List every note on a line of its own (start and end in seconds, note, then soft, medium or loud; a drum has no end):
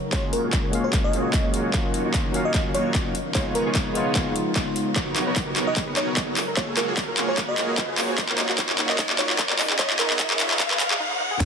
0.00 1.71 C#3 medium
0.00 3.11 F#3 medium
0.00 1.72 G#3 medium
0.00 3.11 A#4 medium
0.00 3.12 F5 medium
0.00 riser medium
0.11 0.70 G#3 medium
0.11 0.71 A#3 medium
0.11 0.41 A#3 medium
0.11 0.71 C#4 medium
0.11 0.41 F4 medium
0.11 0.72 F4 medium
0.11 0.41 F#4 medium
0.11 0.41 G#4 medium
0.11 0.41 C#5 medium
0.11 0.23 C#5 medium
0.11 kick medium
0.11 clap medium
0.11 closed hi-hat medium
0.33 0.44 A#4 medium
0.33 closed hi-hat medium
0.44 1.12 F#1 medium
0.44 1.11 A#3 medium
0.44 1.11 F4 medium
0.44 1.11 F#4 medium
0.44 1.11 G#4 medium
0.44 1.11 C#5 medium
0.53 kick medium
0.53 clap medium
0.53 closed hi-hat medium
0.71 1.71 G#3 medium
0.71 1.71 A#3 medium
0.71 1.72 C#4 medium
0.71 closed hi-hat medium
0.75 1.73 F5 loud
0.84 0.93 C#5 medium
0.93 kick loud
0.93 clap medium
0.93 closed hi-hat medium
1.04 1.45 D#5 medium
1.13 1.72 F#1 medium
1.13 1.72 A#3 medium
1.13 1.72 F4 medium
1.13 1.72 F#4 medium
1.13 1.72 G#4 medium
1.13 1.72 C#5 medium
1.13 closed hi-hat medium
1.34 kick medium
1.34 clap medium
1.34 closed hi-hat medium
1.54 closed hi-hat medium
1.72 3.13 D#3 medium
1.72 2.31 F#3 medium
1.72 2.32 A#3 medium
1.72 2.02 A#3 medium
1.72 3.13 C#4 medium
1.72 2.32 C#4 medium
1.72 2.02 D#4 medium
1.72 2.02 F4 medium
1.72 2.33 F4 medium
1.72 2.02 F#4 medium
1.72 2.02 C#5 medium
1.72 kick medium
1.72 clap medium
1.72 closed hi-hat medium
1.94 closed hi-hat medium
2.05 2.73 D#1 medium
2.05 2.72 A#3 medium
2.05 2.72 D#4 medium
2.05 2.72 F4 medium
2.05 2.72 F#4 medium
2.05 2.72 C#5 medium
2.14 kick medium
2.14 clap medium
2.14 closed hi-hat medium
2.32 3.13 F#3 loud
2.32 3.13 A#3 medium
2.32 3.14 C#4 medium
2.32 3.15 F5 loud
2.32 closed hi-hat medium
2.45 2.51 D#5 medium
2.54 kick loud
2.54 clap medium
2.54 closed hi-hat medium
2.74 3.12 D#1 medium
2.74 3.14 A#3 medium
2.74 3.14 D#4 medium
2.74 3.14 F4 medium
2.74 3.14 F#4 medium
2.74 3.06 C#5 medium
2.74 3.14 C#5 medium
2.74 closed hi-hat medium
2.95 kick medium
2.95 clap medium
2.95 closed hi-hat medium
3.15 4.94 C#3 medium
3.15 4.94 F3 medium
3.15 4.94 G#3 medium
3.15 6.34 B3 medium
3.15 6.34 D#4 medium
3.15 closed hi-hat medium
3.33 3.64 C#2 loud
3.33 3.92 G#3 medium
3.33 3.93 B3 medium
3.33 3.63 B3 medium
3.33 3.63 D#4 medium
3.33 3.93 D#4 medium
3.33 3.63 F4 medium
3.33 3.63 G#4 medium
3.33 3.46 C#5 medium
3.33 3.63 C#5 medium
3.33 kick medium
3.33 clap medium
3.33 closed hi-hat medium
3.37 3.94 F4 medium
3.55 3.95 A#4 medium
3.55 closed hi-hat medium
3.66 4.32 C#2 medium
3.66 4.33 B3 medium
3.66 4.33 D#4 medium
3.66 4.33 F4 medium
3.66 4.33 G#4 medium
3.66 4.33 C#5 medium
3.75 kick medium
3.75 clap medium
3.75 closed hi-hat medium
3.93 4.93 G#3 medium
3.93 4.93 B3 medium
3.93 4.94 D#4 medium
3.93 4.95 F4 loud
3.93 closed hi-hat medium
4.15 kick loud
4.15 clap medium
4.15 closed hi-hat medium
4.36 closed hi-hat medium
4.56 kick loud
4.56 clap medium
4.56 closed hi-hat medium
4.76 closed hi-hat medium
4.96 8.15 C#3 medium
4.96 8.15 F#3 medium
4.96 5.24 B3 medium
4.96 5.24 D#4 medium
4.96 5.02 D#4 medium
4.96 5.24 F#4 medium
4.96 5.24 A#4 medium
4.96 9.55 A#4 medium
4.96 5.24 C#5 medium
4.96 kick medium
4.96 clap medium
4.96 closed hi-hat medium
5.07 5.12 F#4 medium
5.16 5.22 D#4 medium
5.16 clap medium
5.16 closed hi-hat medium
5.27 5.95 B1 loud
5.27 5.94 B3 medium
5.27 5.94 D#4 medium
5.27 5.94 F#4 medium
5.27 5.94 A#4 medium
5.27 5.32 B4 loud
5.27 5.94 C#5 medium
5.36 5.46 D#4 loud
5.36 kick medium
5.36 clap medium
5.36 closed hi-hat medium
5.47 5.55 A#4 medium
5.56 5.63 D#4 medium
5.56 clap medium
5.56 closed hi-hat medium
5.67 5.73 F#4 medium
5.67 5.73 D#5 medium
5.76 5.83 D#4 medium
5.76 5.84 D#5 medium
5.76 kick loud
5.76 clap medium
5.76 closed hi-hat medium
5.87 5.93 B4 loud
5.97 6.34 B1 loud
5.97 6.36 B3 medium
5.97 6.36 D#4 medium
5.97 6.06 D#4 loud
5.97 6.36 F#4 medium
5.97 6.36 A#4 medium
5.97 6.28 C#5 medium
5.97 6.36 C#5 medium
5.97 clap medium
5.97 closed hi-hat medium
6.08 6.16 A#4 medium
6.17 6.23 D#4 medium
6.17 kick medium
6.17 clap medium
6.17 closed hi-hat medium
6.28 6.33 F#4 medium
6.37 8.16 G#3 medium
6.37 6.43 F4 medium
6.37 10.96 F5 medium
6.37 clap medium
6.37 open hi-hat medium
6.48 6.53 A#4 loud
6.57 6.85 A#3 medium
6.57 6.86 F4 medium
6.57 6.66 F4 loud
6.57 6.86 F#4 medium
6.57 6.86 G#4 medium
6.57 6.68 C#5 medium
6.57 6.86 C#5 medium
6.57 kick loud
6.57 clap medium
6.57 closed hi-hat medium
6.68 6.76 G#4 medium
6.77 6.83 F4 medium
6.77 6.88 A#4 medium
6.77 clap medium
6.77 closed hi-hat medium
6.88 7.56 F#1 medium
6.88 7.56 A#3 medium
6.88 7.56 F4 medium
6.88 7.56 F#4 medium
6.88 6.93 F#4 medium
6.88 7.56 G#4 medium
6.88 7.56 C#5 medium
6.97 7.04 F4 medium
6.97 kick medium
6.97 clap medium
6.97 closed hi-hat medium
7.08 7.14 A#4 loud
7.17 7.27 F4 loud
7.17 clap medium
7.17 closed hi-hat medium
7.28 7.36 G#4 medium
7.28 7.37 C#5 medium
7.38 7.44 F4 medium
7.38 kick loud
7.38 clap medium
7.38 closed hi-hat medium
7.48 7.54 F#4 medium
7.48 7.89 D#5 medium
7.58 8.16 F#1 loud
7.58 8.16 A#3 medium
7.58 8.16 F4 medium
7.58 7.64 F4 medium
7.58 8.16 F#4 medium
7.58 8.16 G#4 medium
7.58 8.16 C#5 medium
7.58 clap medium
7.58 closed hi-hat medium
7.69 7.74 A#4 loud
7.78 7.87 F4 loud
7.78 kick loud
7.78 clap medium
7.78 closed hi-hat medium
7.89 7.97 G#4 medium
7.98 8.04 F4 medium
7.98 clap medium
7.98 open hi-hat medium
8.09 8.14 F#4 medium
8.18 10.97 D#3 medium
8.18 9.58 F#3 medium
8.18 8.47 A#3 medium
8.18 10.97 C#4 medium
8.18 8.24 D#4 medium
8.18 8.47 D#4 medium
8.18 8.47 F4 medium
8.18 8.47 F#4 medium
8.18 8.47 C#5 medium
8.18 kick medium
8.18 clap medium
8.18 closed hi-hat medium
8.29 8.34 A#4 loud
8.29 clap medium
8.38 8.48 D#4 loud
8.38 clap medium
8.38 closed hi-hat medium
8.49 9.17 A#3 medium
8.49 9.17 D#4 medium
8.49 9.17 F4 medium
8.49 8.57 F#4 medium
8.49 9.17 F#4 medium
8.49 9.17 C#5 medium
8.49 clap medium
8.58 8.65 D#4 medium
8.58 kick medium
8.58 clap medium
8.58 closed hi-hat medium
8.69 8.75 F4 medium
8.69 clap medium
8.79 8.85 D#4 medium
8.79 clap medium
8.79 closed hi-hat medium
8.89 8.95 A#4 loud
8.89 8.95 D#5 medium
8.89 clap medium
8.99 9.08 D#4 loud
8.99 kick loud
8.99 clap loud
8.99 closed hi-hat medium
9.10 9.18 F#4 medium
9.10 clap medium
9.19 9.58 A#3 medium
9.19 9.58 D#4 medium
9.19 9.25 D#4 medium
9.19 9.58 F4 medium
9.19 9.58 F#4 medium
9.19 9.50 C#5 medium
9.19 9.58 C#5 medium
9.19 clap medium
9.19 closed hi-hat medium
9.30 9.35 F4 medium
9.30 clap medium
9.39 9.45 D#4 medium
9.39 kick loud
9.39 clap loud
9.39 closed hi-hat medium
9.50 9.55 A#4 loud
9.50 clap medium
9.59 10.99 G#3 medium
9.59 10.99 B3 medium
9.59 9.69 D#4 loud
9.59 clap loud
9.59 open hi-hat medium
9.70 9.78 G#4 medium
9.70 clap medium
9.79 10.08 B3 medium
9.79 10.08 D#4 medium
9.79 9.85 D#4 medium
9.79 10.08 F4 medium
9.79 10.08 G#4 medium
9.79 9.90 C#5 medium
9.79 10.08 C#5 loud
9.79 kick loud
9.79 clap loud
9.79 closed hi-hat medium
9.90 9.95 F4 medium
9.90 clap medium
9.99 10.06 D#4 medium
9.99 10.40 A#4 medium
9.99 clap loud
9.99 closed hi-hat medium
10.10 10.76 C#2 loud
10.10 10.78 B3 medium
10.10 10.78 D#4 medium
10.10 10.78 F4 medium
10.10 10.78 G#4 medium
10.10 10.16 B4 loud
10.10 10.78 C#5 medium
10.10 clap medium
10.19 10.29 D#4 loud
10.19 kick loud
10.19 clap loud
10.19 closed hi-hat medium
10.30 10.38 G#4 medium
10.30 clap medium
10.40 10.46 D#4 medium
10.40 clap loud
10.40 closed hi-hat medium
10.51 10.56 F4 medium
10.51 clap loud
10.60 10.66 D#4 medium
10.60 kick loud
10.60 clap loud
10.60 closed hi-hat medium
10.71 10.76 B4 loud
10.71 clap loud
10.80 10.86 B4 medium
10.80 clap loud
10.80 closed hi-hat medium
10.91 10.94 G#4 medium
10.91 clap medium
11.00 11.09 D#4 medium
11.11 11.16 D#4 medium
11.20 11.26 D#4 medium
11.31 11.36 G#4 loud
11.40 11.45 B1 loud
11.40 11.45 B3 medium
11.40 11.45 D#4 medium
11.40 11.45 F#4 medium
11.40 11.45 A#4 medium
11.40 11.45 C#5 medium
11.40 kick loud
11.40 snare medium
11.40 closed hi-hat medium
11.40 crash loud
11.40 downlifter medium